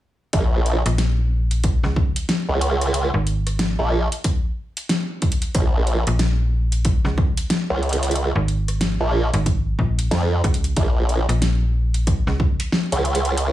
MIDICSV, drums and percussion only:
0, 0, Header, 1, 2, 480
1, 0, Start_track
1, 0, Key_signature, -5, "minor"
1, 0, Tempo, 652174
1, 245, Time_signature, 4, 2, 24, 8
1, 9954, End_track
2, 0, Start_track
2, 0, Title_t, "Drums"
2, 244, Note_on_c, 9, 42, 67
2, 245, Note_on_c, 9, 36, 113
2, 317, Note_off_c, 9, 42, 0
2, 319, Note_off_c, 9, 36, 0
2, 485, Note_on_c, 9, 42, 35
2, 558, Note_off_c, 9, 42, 0
2, 631, Note_on_c, 9, 37, 38
2, 631, Note_on_c, 9, 42, 51
2, 705, Note_off_c, 9, 37, 0
2, 705, Note_off_c, 9, 42, 0
2, 724, Note_on_c, 9, 38, 116
2, 724, Note_on_c, 9, 42, 65
2, 797, Note_off_c, 9, 38, 0
2, 797, Note_off_c, 9, 42, 0
2, 1112, Note_on_c, 9, 42, 53
2, 1185, Note_off_c, 9, 42, 0
2, 1204, Note_on_c, 9, 42, 67
2, 1205, Note_on_c, 9, 36, 100
2, 1277, Note_off_c, 9, 42, 0
2, 1279, Note_off_c, 9, 36, 0
2, 1350, Note_on_c, 9, 38, 36
2, 1424, Note_off_c, 9, 38, 0
2, 1445, Note_on_c, 9, 36, 105
2, 1519, Note_off_c, 9, 36, 0
2, 1590, Note_on_c, 9, 42, 63
2, 1664, Note_off_c, 9, 42, 0
2, 1684, Note_on_c, 9, 38, 118
2, 1684, Note_on_c, 9, 42, 54
2, 1757, Note_off_c, 9, 38, 0
2, 1757, Note_off_c, 9, 42, 0
2, 1924, Note_on_c, 9, 42, 65
2, 1998, Note_off_c, 9, 42, 0
2, 2071, Note_on_c, 9, 37, 41
2, 2071, Note_on_c, 9, 42, 53
2, 2145, Note_off_c, 9, 37, 0
2, 2145, Note_off_c, 9, 42, 0
2, 2164, Note_on_c, 9, 42, 67
2, 2238, Note_off_c, 9, 42, 0
2, 2404, Note_on_c, 9, 42, 37
2, 2478, Note_off_c, 9, 42, 0
2, 2551, Note_on_c, 9, 37, 38
2, 2551, Note_on_c, 9, 42, 52
2, 2625, Note_off_c, 9, 37, 0
2, 2625, Note_off_c, 9, 42, 0
2, 2643, Note_on_c, 9, 38, 123
2, 2643, Note_on_c, 9, 42, 66
2, 2717, Note_off_c, 9, 38, 0
2, 2717, Note_off_c, 9, 42, 0
2, 3033, Note_on_c, 9, 42, 52
2, 3106, Note_off_c, 9, 42, 0
2, 3123, Note_on_c, 9, 42, 69
2, 3124, Note_on_c, 9, 36, 105
2, 3196, Note_off_c, 9, 42, 0
2, 3197, Note_off_c, 9, 36, 0
2, 3510, Note_on_c, 9, 42, 66
2, 3583, Note_off_c, 9, 42, 0
2, 3602, Note_on_c, 9, 38, 121
2, 3602, Note_on_c, 9, 42, 54
2, 3675, Note_off_c, 9, 38, 0
2, 3675, Note_off_c, 9, 42, 0
2, 3841, Note_on_c, 9, 42, 50
2, 3843, Note_on_c, 9, 36, 104
2, 3914, Note_off_c, 9, 42, 0
2, 3914, Note_on_c, 9, 42, 65
2, 3917, Note_off_c, 9, 36, 0
2, 3987, Note_off_c, 9, 42, 0
2, 3988, Note_on_c, 9, 42, 54
2, 4061, Note_off_c, 9, 42, 0
2, 4082, Note_on_c, 9, 42, 66
2, 4083, Note_on_c, 9, 36, 122
2, 4155, Note_off_c, 9, 42, 0
2, 4156, Note_off_c, 9, 36, 0
2, 4320, Note_on_c, 9, 42, 37
2, 4393, Note_off_c, 9, 42, 0
2, 4467, Note_on_c, 9, 37, 37
2, 4467, Note_on_c, 9, 42, 51
2, 4540, Note_off_c, 9, 37, 0
2, 4540, Note_off_c, 9, 42, 0
2, 4558, Note_on_c, 9, 38, 123
2, 4558, Note_on_c, 9, 42, 66
2, 4632, Note_off_c, 9, 38, 0
2, 4632, Note_off_c, 9, 42, 0
2, 4947, Note_on_c, 9, 42, 52
2, 5020, Note_off_c, 9, 42, 0
2, 5039, Note_on_c, 9, 42, 67
2, 5042, Note_on_c, 9, 36, 108
2, 5113, Note_off_c, 9, 42, 0
2, 5115, Note_off_c, 9, 36, 0
2, 5186, Note_on_c, 9, 38, 36
2, 5260, Note_off_c, 9, 38, 0
2, 5282, Note_on_c, 9, 36, 108
2, 5356, Note_off_c, 9, 36, 0
2, 5428, Note_on_c, 9, 42, 64
2, 5501, Note_off_c, 9, 42, 0
2, 5520, Note_on_c, 9, 38, 121
2, 5520, Note_on_c, 9, 42, 52
2, 5594, Note_off_c, 9, 38, 0
2, 5594, Note_off_c, 9, 42, 0
2, 5761, Note_on_c, 9, 42, 21
2, 5809, Note_off_c, 9, 42, 0
2, 5809, Note_on_c, 9, 42, 26
2, 5835, Note_off_c, 9, 42, 0
2, 5835, Note_on_c, 9, 42, 63
2, 5841, Note_off_c, 9, 42, 0
2, 5841, Note_on_c, 9, 42, 29
2, 5908, Note_off_c, 9, 42, 0
2, 5908, Note_on_c, 9, 37, 37
2, 5908, Note_on_c, 9, 42, 52
2, 5921, Note_off_c, 9, 42, 0
2, 5921, Note_on_c, 9, 42, 37
2, 5970, Note_off_c, 9, 42, 0
2, 5970, Note_on_c, 9, 42, 42
2, 5982, Note_off_c, 9, 37, 0
2, 6003, Note_off_c, 9, 42, 0
2, 6003, Note_on_c, 9, 42, 64
2, 6076, Note_off_c, 9, 42, 0
2, 6244, Note_on_c, 9, 42, 36
2, 6317, Note_off_c, 9, 42, 0
2, 6391, Note_on_c, 9, 37, 36
2, 6391, Note_on_c, 9, 42, 49
2, 6464, Note_off_c, 9, 37, 0
2, 6464, Note_off_c, 9, 42, 0
2, 6483, Note_on_c, 9, 38, 118
2, 6483, Note_on_c, 9, 42, 63
2, 6556, Note_off_c, 9, 38, 0
2, 6556, Note_off_c, 9, 42, 0
2, 6871, Note_on_c, 9, 42, 49
2, 6945, Note_off_c, 9, 42, 0
2, 6963, Note_on_c, 9, 36, 109
2, 6963, Note_on_c, 9, 42, 62
2, 7037, Note_off_c, 9, 36, 0
2, 7037, Note_off_c, 9, 42, 0
2, 7203, Note_on_c, 9, 36, 61
2, 7277, Note_off_c, 9, 36, 0
2, 7350, Note_on_c, 9, 42, 62
2, 7424, Note_off_c, 9, 42, 0
2, 7444, Note_on_c, 9, 38, 119
2, 7444, Note_on_c, 9, 42, 50
2, 7517, Note_off_c, 9, 38, 0
2, 7517, Note_off_c, 9, 42, 0
2, 7683, Note_on_c, 9, 36, 105
2, 7685, Note_on_c, 9, 42, 47
2, 7757, Note_off_c, 9, 36, 0
2, 7758, Note_off_c, 9, 42, 0
2, 7758, Note_on_c, 9, 42, 59
2, 7832, Note_off_c, 9, 42, 0
2, 7832, Note_on_c, 9, 42, 50
2, 7906, Note_off_c, 9, 42, 0
2, 7923, Note_on_c, 9, 42, 63
2, 7924, Note_on_c, 9, 36, 113
2, 7997, Note_off_c, 9, 42, 0
2, 7998, Note_off_c, 9, 36, 0
2, 8163, Note_on_c, 9, 42, 35
2, 8237, Note_off_c, 9, 42, 0
2, 8311, Note_on_c, 9, 37, 37
2, 8311, Note_on_c, 9, 42, 48
2, 8385, Note_off_c, 9, 37, 0
2, 8385, Note_off_c, 9, 42, 0
2, 8404, Note_on_c, 9, 38, 115
2, 8404, Note_on_c, 9, 42, 63
2, 8477, Note_off_c, 9, 38, 0
2, 8477, Note_off_c, 9, 42, 0
2, 8790, Note_on_c, 9, 42, 47
2, 8864, Note_off_c, 9, 42, 0
2, 8884, Note_on_c, 9, 36, 104
2, 8884, Note_on_c, 9, 42, 60
2, 8957, Note_off_c, 9, 42, 0
2, 8958, Note_off_c, 9, 36, 0
2, 9032, Note_on_c, 9, 38, 36
2, 9105, Note_off_c, 9, 38, 0
2, 9124, Note_on_c, 9, 36, 105
2, 9198, Note_off_c, 9, 36, 0
2, 9272, Note_on_c, 9, 42, 60
2, 9346, Note_off_c, 9, 42, 0
2, 9365, Note_on_c, 9, 38, 119
2, 9439, Note_off_c, 9, 38, 0
2, 9512, Note_on_c, 9, 42, 49
2, 9585, Note_off_c, 9, 42, 0
2, 9605, Note_on_c, 9, 42, 46
2, 9678, Note_off_c, 9, 42, 0
2, 9678, Note_on_c, 9, 42, 58
2, 9752, Note_off_c, 9, 42, 0
2, 9752, Note_on_c, 9, 42, 48
2, 9826, Note_off_c, 9, 42, 0
2, 9844, Note_on_c, 9, 42, 62
2, 9918, Note_off_c, 9, 42, 0
2, 9954, End_track
0, 0, End_of_file